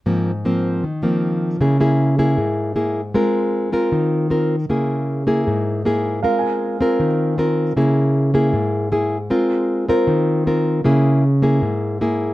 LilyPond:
<<
  \new Staff \with { instrumentName = "Grand piano" } { \time 4/4 \key aes \major \tempo 4 = 156 r1 | r1 | r1 | r1 |
f''16 aes''2 r4. r16 | r1 | r4. c''2 r8 | r1 | }
  \new Staff \with { instrumentName = "Nylon-string guitar" } { \time 4/4 \key aes \major << { <f bes c'>8 r8 <f bes c'>4 r8 <f bes c'>4. | <bes fes' aes'>8 <bes fes' aes'>4 <bes fes' aes'>4. <bes fes' aes'>8 r8 | <c' f' bes'>4. <c' f' bes'>4. <c' f' bes'>8 r8 | <bes fes' aes'>4. <bes fes' aes'>4. <bes fes' aes'>4 |
<c' f' bes'>4. <c' f' bes'>4. <c' f' bes'>4 | <bes fes' aes'>4. <bes fes' aes'>4. <bes fes' aes'>8 r8 | <c' f' bes'>4. <c' f' bes'>4. <c' f' bes'>4 | <bes fes' aes'>4 r8 <bes fes' aes'>4. <bes fes' aes'>4 | } \\ { aes,2 ees2 | des2 aes,2 | aes2 ees2 | des2 aes,2 |
aes2 ees2 | des2 aes,2 | aes2 ees2 | des2 aes,2 | } >> }
>>